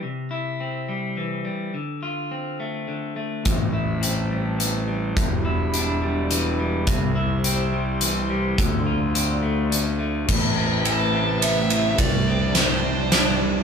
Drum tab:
CC |------|------|------|------|
RD |------|------|------|------|
HH |------|------|x-x-x-|x-x-x-|
SD |------|------|------|------|
BD |------|------|o-----|o-----|

CC |------|------|x-----|------|
RD |------|------|--x-xx|x-x-x-|
HH |x-x-x-|x-x-x-|------|------|
SD |------|------|------|--o-o-|
BD |o-----|o-----|o-----|o-----|